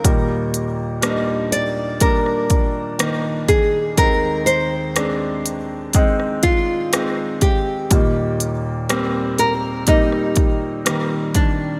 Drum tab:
HH |x-x-x-x-x-x-x-x-|x-x-x-x-x-x-x-x-|x-x-x-x-x-x-x-x-|
SD |----r----r--r---|----r----r--r---|----r----r--r---|
BD |o-------o-o---o-|o-------o-o---o-|o-------o-o---o-|